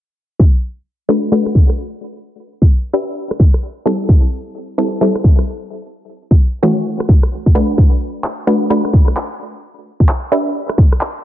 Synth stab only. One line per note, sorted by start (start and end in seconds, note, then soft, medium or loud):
1.09 1.19 A3 medium
1.09 1.19 D4 medium
1.09 1.19 F#4 medium
1.09 1.19 B4 medium
1.32 1.42 A3 medium
1.32 1.42 D4 medium
1.32 1.43 F#4 medium
1.32 1.43 B4 medium
2.93 3.04 D4 medium
2.93 3.04 G4 medium
2.93 3.04 B4 medium
2.93 3.04 E5 medium
3.86 4.76 G3 medium
3.86 4.76 C4 medium
3.86 4.76 E4 medium
3.86 4.76 A4 medium
4.78 4.89 G3 medium
4.78 4.89 C4 medium
4.78 4.89 E4 medium
4.78 4.89 A4 medium
5.01 5.12 G3 medium
5.01 5.12 C4 medium
5.01 5.12 E4 medium
5.01 5.12 A4 medium
6.62 6.73 E3 medium
6.62 6.73 A3 medium
6.62 6.73 C#4 medium
6.62 6.73 F#4 medium
7.55 8.45 A3 medium
7.55 8.45 D4 medium
7.55 8.45 F#4 medium
7.55 8.45 B4 medium
8.47 8.58 A3 medium
8.47 8.58 D4 medium
8.47 8.58 F#4 medium
8.47 8.58 B4 medium
8.70 8.81 A3 medium
8.70 8.81 D4 medium
8.70 8.81 F#4 medium
8.70 8.81 B4 medium
10.32 10.42 D4 medium
10.32 10.42 G4 medium
10.32 10.43 B4 medium
10.32 10.42 E5 medium